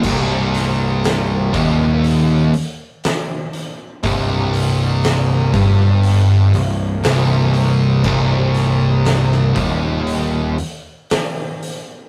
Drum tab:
CC |x---------------|----------------|x---------------|
HH |--o-o-o-o-o-o-o-|o-o-o-o-o-o-o-o-|--o-o-o-o-o-o-o-|
SD |--o-o-------o---|----o-------o---|--o-oo------o---|
BD |o-----o---------|o-----o---------|o-----o---------|